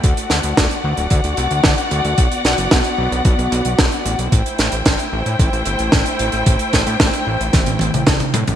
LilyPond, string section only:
\new Staff \with { instrumentName = "String section" } { \time 4/4 \key a \dorian \tempo 4 = 112 << { <fis' d'' fis''>1~ | <fis' d'' fis''>1 | <e' c'' g''>1~ | <e' c'' g''>1 | } \\ { a1 | b1 | a1~ | a1 | } >> }